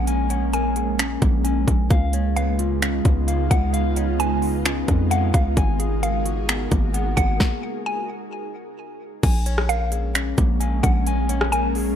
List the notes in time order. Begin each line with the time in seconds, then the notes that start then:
Already playing: A#1 G#3 A#3 C#4 G#4
0.07 G#5, closed hi-hat
0.30 C#5, closed hi-hat
0.53 A#4 G#5, closed hi-hat
0.76 G#4, closed hi-hat
0.99 C#4, finger snap, closed hi-hat
1.22 A#1 A#3, kick, closed hi-hat
1.44 G#5, closed hi-hat
1.68 A#1, kick, closed hi-hat
1.90 C#2 C#3 G#3 B3 D#4 F4 F5, kick, closed hi-hat
2.13 C#5, closed hi-hat
2.36 B4 F5, closed hi-hat
2.59 F4, closed hi-hat
2.82 C#4, finger snap, closed hi-hat
3.05 C#2 B3, kick, closed hi-hat
3.28 F5, closed hi-hat
3.51 C#2 F#5, kick, closed hi-hat
3.73 F5, closed hi-hat
3.96 C#5, closed hi-hat
4.19 B4 G#5, closed hi-hat
4.42 F4, open hi-hat
4.65 C#4, finger snap, closed hi-hat
4.88 F2 B3, kick, closed hi-hat
5.10 F5 F#5, closed hi-hat
5.34 C#2 F5, kick, closed hi-hat
5.57 G#1 F#4 G#4 A#4 G#5, kick, closed hi-hat
5.79 G#4, closed hi-hat
6.03 A#4 F5, closed hi-hat
6.25 F#4, closed hi-hat
6.49 B3, finger snap, closed hi-hat
6.71 G#1 A#3, kick, closed hi-hat
6.94 F#5, closed hi-hat
7.17 G#1 F#5, kick, closed hi-hat
7.40 kick, snare
7.86 G#5
9.23 A#1 G#3 A#3 C#4 G#5, kick, closed hi-hat, crash
9.46 C#5, closed hi-hat
9.58 cross-stick
9.69 A#4 F5, closed hi-hat
9.92 G#4, closed hi-hat
10.15 C#4, finger snap, closed hi-hat
10.38 A#1 A#3, kick, closed hi-hat
10.60 G#5, closed hi-hat
10.83 A#1 F#5, kick, closed hi-hat
11.07 G#5, closed hi-hat
11.29 C#5, closed hi-hat
11.41 cross-stick
11.52 A#4 G#5, closed hi-hat
11.75 G#4, open hi-hat